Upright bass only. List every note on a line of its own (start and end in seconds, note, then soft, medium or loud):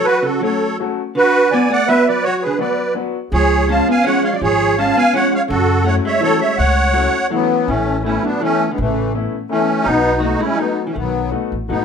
3.32 3.79 C#2 loud
4.42 4.89 G#1 medium
5.50 5.97 F#2 loud
6.59 7.06 C#2 loud
7.68 8.16 A1 medium
8.78 9.25 A1 loud
9.86 10.34 B1 loud
10.96 11.32 B1 medium
11.52 11.67 A1 medium
11.70 11.85 G#1 medium